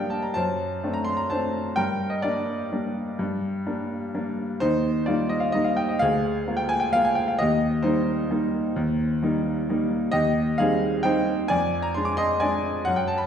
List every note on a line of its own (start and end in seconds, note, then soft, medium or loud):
0.00 0.38 G2 medium
0.00 0.37 G3 medium
0.00 0.38 A#3 medium
0.00 0.38 D4 medium
0.00 0.38 G4 medium
0.00 0.38 A#4 medium
0.00 0.38 D5 loud
0.00 0.38 D#5 medium
0.00 0.38 F5 loud
0.00 0.10 G5 medium
0.10 0.23 A5 medium
0.22 0.35 A#5 medium
0.34 0.82 F#2 medium
0.34 0.90 C5 medium
0.34 0.94 A5 loud
0.84 1.27 A3 medium
0.84 1.27 C4 medium
0.84 1.27 D4 medium
0.93 1.06 A#5 medium
1.05 1.17 C6 loud
1.17 1.29 A#5 medium
1.30 1.73 A3 medium
1.30 1.74 C4 medium
1.30 1.74 D4 medium
1.30 1.74 C5 medium
1.30 1.77 A5 medium
1.76 2.22 G2 medium
1.76 2.09 A#4 medium
1.76 2.11 G5 loud
2.10 2.22 D#5 medium
2.22 2.67 G3 soft
2.22 2.67 A#3 soft
2.22 2.68 D4 medium
2.22 4.34 G4 medium
2.22 4.37 D5 medium
2.72 3.15 G3 medium
2.72 3.15 A#3 medium
2.72 3.15 D4 medium
3.19 3.64 G2 medium
3.66 4.10 G3 medium
3.66 4.10 A#3 medium
3.66 4.10 D4 medium
4.15 4.58 G3 soft
4.15 4.58 A#3 medium
4.15 4.58 D4 medium
4.60 5.07 D#2 medium
4.60 5.05 D#4 medium
4.60 5.07 C5 loud
5.06 5.52 G3 medium
5.06 5.52 A#3 medium
5.06 5.52 D#4 medium
5.06 5.30 F4 medium
5.06 5.31 D5 medium
5.29 5.43 D#5 medium
5.40 5.54 F5 medium
5.52 5.97 G3 medium
5.52 5.97 A#3 medium
5.52 5.97 D#4 medium
5.52 5.66 D#5 loud
5.64 5.78 F5 medium
5.77 5.89 G5 medium
5.89 6.01 D#5 medium
5.99 6.46 D2 medium
5.99 6.55 G#4 medium
5.99 6.58 F5 loud
6.47 6.90 G#3 medium
6.47 6.91 A#3 medium
6.47 6.91 F4 medium
6.57 6.70 G5 medium
6.69 6.82 G#5 loud
6.80 6.93 G5 medium
6.93 7.36 G#3 medium
6.93 7.36 A#3 soft
6.93 7.36 F4 medium
6.93 7.05 F5 loud
7.05 7.17 G#5 medium
7.15 7.28 G5 medium
7.28 7.39 F5 medium
7.39 7.83 D#2 medium
7.39 7.81 G4 medium
7.39 7.83 D#5 loud
7.83 8.27 G3 medium
7.83 8.27 A#3 medium
7.83 8.30 D#4 medium
7.83 9.90 C5 loud
8.30 8.72 G3 medium
8.30 8.72 A#3 medium
8.30 8.73 D#4 medium
8.76 9.20 D#2 medium
9.22 9.64 G3 medium
9.22 9.65 A#3 medium
9.22 9.65 D#4 medium
9.69 10.10 G3 medium
9.69 10.10 A#3 medium
9.69 10.11 D#4 medium
10.12 10.57 D#2 medium
10.12 10.55 G4 medium
10.12 10.57 D#5 loud
10.58 11.01 G3 medium
10.58 11.02 C4 medium
10.58 11.01 D#4 medium
10.58 11.02 G#4 medium
10.58 11.04 F5 loud
11.03 11.47 G3 medium
11.03 11.47 C4 medium
11.03 11.47 D#4 medium
11.03 11.47 C5 medium
11.03 11.50 G5 loud
11.48 11.95 F2 medium
11.48 11.82 D5 medium
11.48 11.83 G#5 loud
11.82 11.95 A#5 loud
11.94 12.38 G#3 medium
11.94 12.39 D4 medium
11.94 12.07 C6 medium
12.05 12.18 D6 medium
12.17 12.40 D#5 medium
12.17 12.41 C6 loud
12.40 12.83 G#3 medium
12.40 12.84 D4 medium
12.40 12.84 D5 medium
12.40 12.87 G#5 loud
12.85 13.27 F#2 medium
12.85 12.97 F#5 loud
12.96 13.09 G5 medium
13.08 13.20 A5 medium
13.18 13.27 B5 medium